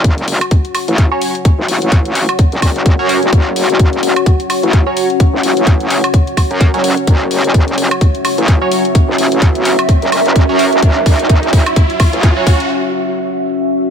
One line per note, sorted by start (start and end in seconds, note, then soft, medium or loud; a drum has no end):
0.00 0.39 F#1 medium
0.00 13.90 C#4 medium
0.00 12.70 F#4 medium
0.00 13.90 F#4 medium
0.00 7.06 C#5 medium
0.00 12.70 C#5 medium
0.00 9.21 F#5 medium
0.04 kick loud
0.04 closed hi-hat medium
0.18 closed hi-hat soft
0.28 open hi-hat loud
0.41 closed hi-hat medium
0.41 high woodblock medium
0.51 kick loud
0.51 closed hi-hat medium
0.65 closed hi-hat soft
0.75 open hi-hat loud
0.75 high woodblock medium
0.88 1.10 A1 medium
0.88 closed hi-hat soft
0.98 kick loud
0.98 closed hi-hat medium
1.12 1.34 F#3 medium
1.12 1.34 C#4 medium
1.12 1.34 F#4 medium
1.12 1.34 C#5 loud
1.21 open hi-hat loud
1.35 closed hi-hat soft
1.45 kick loud
1.45 closed hi-hat medium
1.59 1.67 G#1 loud
1.68 1.80 A1 medium
1.68 open hi-hat loud
1.82 2.27 A1 medium
1.82 closed hi-hat medium
1.92 kick loud
1.92 closed hi-hat medium
2.05 closed hi-hat soft
2.15 open hi-hat loud
2.29 closed hi-hat medium
2.29 high woodblock medium
2.39 kick loud
2.39 closed hi-hat medium
2.52 2.61 F#1 loud
2.52 closed hi-hat soft
2.62 2.97 F#1 loud
2.62 kick medium
2.62 open hi-hat loud
2.62 high woodblock medium
2.76 closed hi-hat soft
2.86 kick loud
2.86 closed hi-hat medium
2.99 3.20 F#2 medium
2.99 3.21 F#3 medium
2.99 3.21 C#4 medium
2.99 3.21 F#4 medium
2.99 3.21 C#5 loud
3.09 open hi-hat loud
3.23 3.31 F#1 loud
3.23 closed hi-hat soft
3.33 3.67 F#1 medium
3.33 kick loud
3.33 closed hi-hat medium
3.56 open hi-hat loud
3.69 4.14 F#1 medium
3.69 closed hi-hat soft
3.79 kick loud
3.79 closed hi-hat medium
3.93 closed hi-hat soft
4.03 open hi-hat loud
4.16 closed hi-hat medium
4.16 high woodblock medium
4.26 kick loud
4.26 closed hi-hat medium
4.40 closed hi-hat soft
4.50 open hi-hat loud
4.50 high woodblock medium
4.63 4.85 A1 medium
4.63 closed hi-hat soft
4.73 kick loud
4.73 closed hi-hat medium
4.87 5.09 F#3 medium
4.87 5.09 C#4 medium
4.87 5.09 F#4 medium
4.87 5.09 C#5 loud
4.97 open hi-hat loud
5.10 closed hi-hat soft
5.20 kick loud
5.20 closed hi-hat medium
5.34 5.42 G#1 loud
5.43 5.55 A1 medium
5.43 open hi-hat loud
5.57 6.02 A1 medium
5.57 closed hi-hat soft
5.67 kick loud
5.67 closed hi-hat medium
5.80 closed hi-hat soft
5.90 open hi-hat loud
6.04 closed hi-hat soft
6.04 high woodblock medium
6.14 kick loud
6.14 closed hi-hat medium
6.27 closed hi-hat soft
6.37 kick medium
6.37 open hi-hat loud
6.37 high woodblock medium
6.51 6.72 F#2 medium
6.51 closed hi-hat soft
6.61 kick loud
6.61 closed hi-hat medium
6.74 6.95 F#1 medium
6.74 6.96 F#3 loud
6.74 6.96 C#4 medium
6.74 6.96 F#4 medium
6.74 6.96 C#5 loud
6.74 closed hi-hat soft
6.84 open hi-hat loud
6.97 closed hi-hat soft
7.07 7.42 F#1 medium
7.07 13.90 E5 medium
7.07 kick loud
7.07 closed hi-hat medium
7.07 riser medium
7.31 open hi-hat loud
7.44 7.89 F#1 medium
7.44 closed hi-hat medium
7.54 kick loud
7.54 closed hi-hat medium
7.68 closed hi-hat soft
7.78 open hi-hat loud
7.91 closed hi-hat soft
7.91 high woodblock medium
8.01 kick loud
8.01 closed hi-hat medium
8.15 closed hi-hat soft
8.25 open hi-hat loud
8.25 high woodblock medium
8.38 8.59 A1 medium
8.38 closed hi-hat soft
8.48 kick loud
8.48 closed hi-hat medium
8.61 8.84 F#3 loud
8.61 8.84 C#4 medium
8.61 8.84 F#4 medium
8.61 8.84 C#5 loud
8.71 open hi-hat loud
8.85 closed hi-hat soft
8.95 kick loud
8.95 closed hi-hat medium
9.08 9.17 G#1 loud
9.08 12.70 E5 medium
9.18 9.30 A1 loud
9.18 open hi-hat loud
9.32 9.77 A1 medium
9.32 closed hi-hat medium
9.42 kick loud
9.42 closed hi-hat medium
9.55 closed hi-hat soft
9.65 open hi-hat loud
9.79 closed hi-hat medium
9.79 high woodblock medium
9.89 kick loud
9.89 closed hi-hat medium
10.02 10.11 F#1 loud
10.02 closed hi-hat soft
10.12 10.47 F#1 loud
10.12 open hi-hat loud
10.12 high woodblock medium
10.26 closed hi-hat soft
10.36 kick loud
10.36 closed hi-hat medium
10.49 10.70 F#2 loud
10.49 10.71 F#3 loud
10.49 10.71 C#4 medium
10.49 10.71 F#4 medium
10.49 10.71 C#5 loud
10.59 open hi-hat loud
10.73 10.81 F#1 loud
10.73 closed hi-hat soft
10.82 11.17 F#1 medium
10.82 kick loud
10.82 closed hi-hat medium
11.06 kick loud
11.06 open hi-hat loud
11.19 11.64 F#1 loud
11.19 closed hi-hat medium
11.29 kick loud
11.29 closed hi-hat medium
11.43 closed hi-hat soft
11.53 kick loud
11.53 open hi-hat loud
11.66 closed hi-hat medium
11.66 high woodblock medium
11.76 kick loud
11.76 closed hi-hat medium
11.90 closed hi-hat soft
12.00 kick loud
12.00 open hi-hat loud
12.00 high woodblock medium
12.13 12.34 A1 loud
12.13 closed hi-hat soft
12.23 kick loud
12.23 closed hi-hat medium
12.37 12.59 F#3 loud
12.37 12.59 C#4 medium
12.37 12.59 F#4 medium
12.37 12.59 C#5 loud
12.47 kick loud
12.47 open hi-hat loud
12.60 closed hi-hat soft